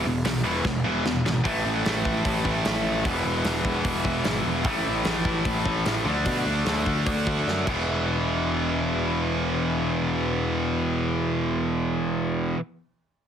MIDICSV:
0, 0, Header, 1, 4, 480
1, 0, Start_track
1, 0, Tempo, 401606
1, 1735, Time_signature, 4, 2, 24, 8
1, 15866, End_track
2, 0, Start_track
2, 0, Title_t, "Distorted electric guitar"
2, 0, Program_c, 0, 30
2, 69, Note_on_c, 0, 40, 83
2, 73, Note_on_c, 0, 47, 89
2, 280, Note_off_c, 0, 40, 0
2, 285, Note_off_c, 0, 47, 0
2, 294, Note_on_c, 0, 40, 76
2, 300, Note_on_c, 0, 47, 79
2, 507, Note_off_c, 0, 40, 0
2, 517, Note_off_c, 0, 47, 0
2, 521, Note_on_c, 0, 40, 90
2, 532, Note_on_c, 0, 47, 101
2, 542, Note_on_c, 0, 52, 107
2, 756, Note_off_c, 0, 40, 0
2, 762, Note_off_c, 0, 47, 0
2, 767, Note_off_c, 0, 52, 0
2, 781, Note_on_c, 0, 40, 77
2, 781, Note_on_c, 0, 47, 84
2, 993, Note_off_c, 0, 40, 0
2, 996, Note_off_c, 0, 47, 0
2, 1008, Note_on_c, 0, 40, 94
2, 1013, Note_on_c, 0, 47, 92
2, 1020, Note_on_c, 0, 52, 99
2, 1238, Note_off_c, 0, 40, 0
2, 1240, Note_off_c, 0, 47, 0
2, 1244, Note_off_c, 0, 52, 0
2, 1256, Note_on_c, 0, 40, 73
2, 1260, Note_on_c, 0, 47, 85
2, 1471, Note_off_c, 0, 40, 0
2, 1474, Note_off_c, 0, 47, 0
2, 1500, Note_on_c, 0, 40, 72
2, 1502, Note_on_c, 0, 47, 87
2, 1711, Note_off_c, 0, 47, 0
2, 1713, Note_off_c, 0, 40, 0
2, 1716, Note_on_c, 0, 45, 91
2, 1738, Note_on_c, 0, 52, 96
2, 1759, Note_on_c, 0, 57, 100
2, 3620, Note_off_c, 0, 45, 0
2, 3639, Note_on_c, 0, 40, 89
2, 3642, Note_off_c, 0, 57, 0
2, 3660, Note_on_c, 0, 47, 97
2, 3675, Note_off_c, 0, 52, 0
2, 3679, Note_on_c, 0, 52, 104
2, 5538, Note_off_c, 0, 47, 0
2, 5542, Note_off_c, 0, 40, 0
2, 5543, Note_on_c, 0, 45, 96
2, 5551, Note_off_c, 0, 52, 0
2, 5565, Note_on_c, 0, 52, 99
2, 5586, Note_on_c, 0, 57, 102
2, 7217, Note_off_c, 0, 45, 0
2, 7228, Note_off_c, 0, 52, 0
2, 7229, Note_on_c, 0, 50, 89
2, 7238, Note_off_c, 0, 57, 0
2, 7256, Note_on_c, 0, 57, 99
2, 7274, Note_on_c, 0, 62, 102
2, 9144, Note_off_c, 0, 50, 0
2, 9154, Note_on_c, 0, 40, 97
2, 9158, Note_off_c, 0, 57, 0
2, 9167, Note_off_c, 0, 62, 0
2, 9180, Note_on_c, 0, 47, 101
2, 9197, Note_on_c, 0, 52, 99
2, 15017, Note_off_c, 0, 40, 0
2, 15043, Note_off_c, 0, 47, 0
2, 15060, Note_off_c, 0, 52, 0
2, 15866, End_track
3, 0, Start_track
3, 0, Title_t, "Picked electric bass"
3, 0, Program_c, 1, 34
3, 56, Note_on_c, 1, 28, 88
3, 267, Note_off_c, 1, 28, 0
3, 298, Note_on_c, 1, 35, 93
3, 507, Note_off_c, 1, 35, 0
3, 533, Note_on_c, 1, 28, 84
3, 743, Note_off_c, 1, 28, 0
3, 770, Note_on_c, 1, 28, 96
3, 981, Note_off_c, 1, 28, 0
3, 1011, Note_on_c, 1, 28, 93
3, 1221, Note_off_c, 1, 28, 0
3, 1256, Note_on_c, 1, 28, 100
3, 1463, Note_off_c, 1, 28, 0
3, 1488, Note_on_c, 1, 32, 90
3, 1698, Note_off_c, 1, 32, 0
3, 1733, Note_on_c, 1, 33, 97
3, 1959, Note_off_c, 1, 33, 0
3, 1972, Note_on_c, 1, 33, 81
3, 2197, Note_off_c, 1, 33, 0
3, 2218, Note_on_c, 1, 33, 95
3, 2665, Note_off_c, 1, 33, 0
3, 2693, Note_on_c, 1, 33, 92
3, 2916, Note_off_c, 1, 33, 0
3, 2930, Note_on_c, 1, 33, 88
3, 3154, Note_off_c, 1, 33, 0
3, 3162, Note_on_c, 1, 33, 92
3, 3649, Note_on_c, 1, 28, 95
3, 3667, Note_off_c, 1, 33, 0
3, 3872, Note_off_c, 1, 28, 0
3, 3886, Note_on_c, 1, 28, 83
3, 4110, Note_off_c, 1, 28, 0
3, 4116, Note_on_c, 1, 28, 97
3, 4345, Note_off_c, 1, 28, 0
3, 4358, Note_on_c, 1, 28, 91
3, 4585, Note_off_c, 1, 28, 0
3, 4604, Note_on_c, 1, 28, 89
3, 4828, Note_off_c, 1, 28, 0
3, 4843, Note_on_c, 1, 28, 92
3, 5067, Note_off_c, 1, 28, 0
3, 5079, Note_on_c, 1, 32, 98
3, 5305, Note_off_c, 1, 32, 0
3, 5320, Note_on_c, 1, 28, 84
3, 5559, Note_off_c, 1, 28, 0
3, 5559, Note_on_c, 1, 33, 93
3, 5785, Note_off_c, 1, 33, 0
3, 5799, Note_on_c, 1, 33, 84
3, 6022, Note_off_c, 1, 33, 0
3, 6029, Note_on_c, 1, 33, 98
3, 6486, Note_off_c, 1, 33, 0
3, 6521, Note_on_c, 1, 33, 90
3, 6746, Note_off_c, 1, 33, 0
3, 6757, Note_on_c, 1, 33, 91
3, 6984, Note_off_c, 1, 33, 0
3, 7000, Note_on_c, 1, 33, 97
3, 7226, Note_off_c, 1, 33, 0
3, 7238, Note_on_c, 1, 38, 87
3, 7465, Note_off_c, 1, 38, 0
3, 7485, Note_on_c, 1, 47, 93
3, 7709, Note_off_c, 1, 47, 0
3, 7716, Note_on_c, 1, 38, 78
3, 7944, Note_off_c, 1, 38, 0
3, 7955, Note_on_c, 1, 38, 92
3, 8184, Note_off_c, 1, 38, 0
3, 8204, Note_on_c, 1, 38, 88
3, 8430, Note_off_c, 1, 38, 0
3, 8442, Note_on_c, 1, 38, 94
3, 8669, Note_off_c, 1, 38, 0
3, 8691, Note_on_c, 1, 38, 86
3, 8914, Note_off_c, 1, 38, 0
3, 8935, Note_on_c, 1, 42, 91
3, 9156, Note_off_c, 1, 42, 0
3, 9168, Note_on_c, 1, 28, 84
3, 14984, Note_off_c, 1, 28, 0
3, 15866, End_track
4, 0, Start_track
4, 0, Title_t, "Drums"
4, 297, Note_on_c, 9, 46, 64
4, 306, Note_on_c, 9, 38, 111
4, 417, Note_off_c, 9, 46, 0
4, 425, Note_off_c, 9, 38, 0
4, 775, Note_on_c, 9, 36, 106
4, 780, Note_on_c, 9, 38, 64
4, 895, Note_off_c, 9, 36, 0
4, 899, Note_off_c, 9, 38, 0
4, 1263, Note_on_c, 9, 38, 97
4, 1382, Note_off_c, 9, 38, 0
4, 1507, Note_on_c, 9, 38, 94
4, 1626, Note_off_c, 9, 38, 0
4, 1735, Note_on_c, 9, 36, 114
4, 1739, Note_on_c, 9, 46, 55
4, 1855, Note_off_c, 9, 36, 0
4, 1858, Note_off_c, 9, 46, 0
4, 2218, Note_on_c, 9, 46, 56
4, 2226, Note_on_c, 9, 38, 108
4, 2337, Note_off_c, 9, 46, 0
4, 2346, Note_off_c, 9, 38, 0
4, 2454, Note_on_c, 9, 36, 91
4, 2573, Note_off_c, 9, 36, 0
4, 2691, Note_on_c, 9, 36, 107
4, 2691, Note_on_c, 9, 46, 58
4, 2810, Note_off_c, 9, 36, 0
4, 2811, Note_off_c, 9, 46, 0
4, 2929, Note_on_c, 9, 36, 83
4, 3049, Note_off_c, 9, 36, 0
4, 3168, Note_on_c, 9, 46, 57
4, 3176, Note_on_c, 9, 38, 110
4, 3287, Note_off_c, 9, 46, 0
4, 3296, Note_off_c, 9, 38, 0
4, 3647, Note_on_c, 9, 36, 113
4, 3649, Note_on_c, 9, 46, 59
4, 3766, Note_off_c, 9, 36, 0
4, 3768, Note_off_c, 9, 46, 0
4, 4118, Note_on_c, 9, 46, 60
4, 4126, Note_on_c, 9, 38, 113
4, 4237, Note_off_c, 9, 46, 0
4, 4246, Note_off_c, 9, 38, 0
4, 4359, Note_on_c, 9, 36, 83
4, 4479, Note_off_c, 9, 36, 0
4, 4598, Note_on_c, 9, 46, 58
4, 4599, Note_on_c, 9, 36, 108
4, 4718, Note_off_c, 9, 46, 0
4, 4719, Note_off_c, 9, 36, 0
4, 4839, Note_on_c, 9, 36, 86
4, 4959, Note_off_c, 9, 36, 0
4, 5075, Note_on_c, 9, 46, 57
4, 5083, Note_on_c, 9, 38, 106
4, 5194, Note_off_c, 9, 46, 0
4, 5202, Note_off_c, 9, 38, 0
4, 5550, Note_on_c, 9, 46, 54
4, 5556, Note_on_c, 9, 36, 114
4, 5670, Note_off_c, 9, 46, 0
4, 5675, Note_off_c, 9, 36, 0
4, 6032, Note_on_c, 9, 46, 53
4, 6040, Note_on_c, 9, 38, 108
4, 6151, Note_off_c, 9, 46, 0
4, 6160, Note_off_c, 9, 38, 0
4, 6276, Note_on_c, 9, 36, 84
4, 6396, Note_off_c, 9, 36, 0
4, 6515, Note_on_c, 9, 46, 53
4, 6517, Note_on_c, 9, 36, 109
4, 6635, Note_off_c, 9, 46, 0
4, 6637, Note_off_c, 9, 36, 0
4, 6759, Note_on_c, 9, 36, 85
4, 6879, Note_off_c, 9, 36, 0
4, 6999, Note_on_c, 9, 46, 53
4, 7007, Note_on_c, 9, 38, 109
4, 7118, Note_off_c, 9, 46, 0
4, 7127, Note_off_c, 9, 38, 0
4, 7476, Note_on_c, 9, 46, 60
4, 7480, Note_on_c, 9, 36, 105
4, 7596, Note_off_c, 9, 46, 0
4, 7600, Note_off_c, 9, 36, 0
4, 7960, Note_on_c, 9, 46, 57
4, 7968, Note_on_c, 9, 38, 105
4, 8079, Note_off_c, 9, 46, 0
4, 8087, Note_off_c, 9, 38, 0
4, 8202, Note_on_c, 9, 36, 81
4, 8322, Note_off_c, 9, 36, 0
4, 8442, Note_on_c, 9, 46, 56
4, 8444, Note_on_c, 9, 36, 108
4, 8561, Note_off_c, 9, 46, 0
4, 8564, Note_off_c, 9, 36, 0
4, 8687, Note_on_c, 9, 36, 82
4, 8806, Note_off_c, 9, 36, 0
4, 8940, Note_on_c, 9, 38, 55
4, 9059, Note_off_c, 9, 38, 0
4, 9169, Note_on_c, 9, 36, 105
4, 9170, Note_on_c, 9, 49, 86
4, 9288, Note_off_c, 9, 36, 0
4, 9290, Note_off_c, 9, 49, 0
4, 15866, End_track
0, 0, End_of_file